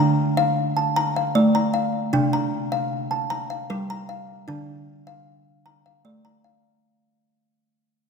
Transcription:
Already playing: D3 D4
0.00 A#5
0.37 F5
0.77 A5
0.96 A#5
1.16 F5
1.35 A3 D5
1.55 A#5
1.74 F5
2.13 C3 D4
2.33 A#5
2.72 F5
3.11 A5
3.30 A#5
3.50 F5
3.70 G3 A#4
3.90 A#5
4.09 F5
4.48 D3 D4
5.07 F5
5.66 A#5
5.86 F5
6.05 A3 D5
6.25 A#5
6.44 F5

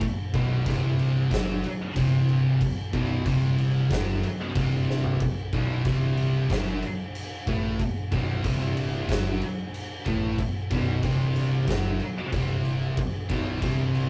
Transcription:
0.01 kick, crash
0.33 B0 B1 B2, kick, crash
0.65 C1 C2 C3, kick, snare, crash
0.99 crash
1.30 F#1 F#2 F#3, kick, snare, crash
1.64 crash
1.95 C1 C2 C3, kick, crash
2.29 crash
2.61 kick, crash
2.92 B0 B1 B2, kick, crash
3.26 C1 C2 C3, kick, crash
3.58 crash
3.90 F#1 F#2 F#3, kick, snare, crash
4.23 crash
4.55 C1 C2 C3, kick, crash
4.90 snare
5.04 floor tom
5.20 kick, crash
5.53 B0 B1 B2, kick, crash
5.85 C1 C2 C3, kick, snare, crash
6.17 crash
6.50 F#1 F#2 F#3, kick, snare, crash
6.82 crash
7.15 crash
7.47 A1 A2 A3, kick, crash
7.80 kick, crash
8.11 B0 B1 B2, kick, crash
8.43 C1 C2 C3, kick, crash
8.77 crash
9.08 F#1 F#2 F#3, kick, snare, crash
9.41 crash
9.74 crash
10.06 A1 A2 A3, kick, crash
10.38 kick, crash
10.71 B0 B1 B2, kick, crash
11.03 C1 C2 C3, kick, crash
11.36 crash
11.68 F#1 F#2 F#3, kick, snare, crash
12.00 crash
12.32 C1 C2 C3, kick, crash
12.65 crash
12.97 kick, crash
13.30 B0 B1 B2, kick, crash
13.62 C1 C2 C3, kick, snare, crash
13.95 crash

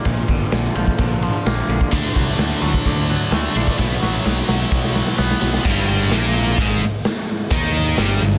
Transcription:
0.05 A#1 A#2, kick, ride
0.28 G1 D3, kick, ride
0.52 A#1 D3, snare, ride
0.75 A#1 F3, ride
0.87 kick
0.98 A#1 D3, kick, ride
1.22 F3, ride
1.46 A#1 A#3, snare, ride
1.69 A#1 D3, ride
1.81 kick
1.92 D2 D3 A3 D4, kick, ride
2.16 C2 F#3, kick, ride
2.38 D2 D3, snare, ride
2.62 D2 F#3, ride
2.74 kick
2.85 D2 D3, kick, ride
3.09 F#3, ride
3.32 D2 A3, snare, ride
3.54 A#1 D3 A3 D4, ride
3.67 kick
3.78 B1 B2 F#3 B3, kick, snare
4.03 A1 F#3, snare
4.25 B1 B2, snare
4.48 B1 F#3, snare
4.71 B1 B2, kick, snare
4.84 snare
4.95 F#3, snare
5.07 snare
5.18 B1 B3, snare
5.31 snare
5.41 B1 B2 F#3 B3, snare
5.54 snare
5.65 G1 G2 G3, kick, crash
5.88 open hi-hat
6.11 A#1 A#2 A#3, snare, open hi-hat
6.34 open hi-hat
6.58 G#1 G#2 G#3, kick, open hi-hat
6.81 open hi-hat
7.05 snare, open hi-hat
7.28 open hi-hat
7.51 D#2 D#3 D#4, kick, open hi-hat
7.74 open hi-hat
7.97 G1 G2 G3, snare, open hi-hat
8.20 G1 G2, open hi-hat

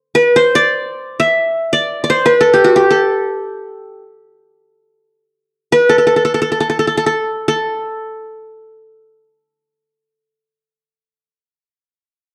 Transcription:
0.15 B4
0.36 C5
0.55 D5
1.20 E5
1.73 D5
2.04 D5
2.10 C5
2.26 B4
2.41 A4
2.54 G4
2.64 F#4
2.76 G4
2.91 A4
5.72 B4
5.89 A4
5.98 A4
6.07 A4
6.16 A4
6.25 A4
6.34 A4
6.42 A4
6.52 A4
6.60 A4
6.70 A4
6.79 A4
6.87 A4
6.97 A4
7.06 A4
7.48 A4

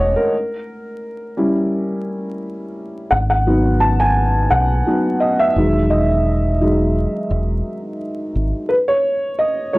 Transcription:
Already playing: E1 G#3 A3 E4 C#5 D#5 F#5 G#5
0.16 A#4
1.37 G3 C#4 E4
3.11 G#1 F#5
3.30 F#5
3.46 F#3 B3 D#4
3.80 A5
4.00 G#5
4.50 B1 F#5
4.86 F#3 B3 D#4
5.20 D#5
5.39 E5
5.56 E1 D#3 F#3 G#3
5.90 D#5
6.61 F#3 G#3 D#4
7.31 E1
8.35 G#1
8.69 B4
8.88 C#5
9.39 D#5
9.73 G#3 A3 C#5

